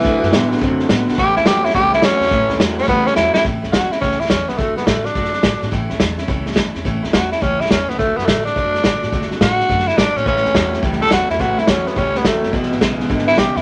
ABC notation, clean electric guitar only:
X:1
M:4/4
L:1/8
Q:"Swing" 1/4=211
K:A
V:1 name="Clean electric guitar" clef=bass
[D,A,]2 [D,B,]2 [D,=C]2 [D,B,]2 | [A,,E,]2 [A,,F,]2 [A,,=G,]2 [A,,F,]2 | [A,,E,]2 [A,,F,]2 [A,,=G,]2 [A,,F,]2 | z8 |
z8 | z8 | z8 | z8 |
z8 | [A,,E,]2 [A,,F,]2 [A,,=G,]2 [A,,F,]2 | [A,,E,]2 [A,,F,]2 [A,,=G,]2 [A,,F,]2 | [E,,B,,]2 [E,,C,]2 [E,,D,]2 [E,,C,]2 |]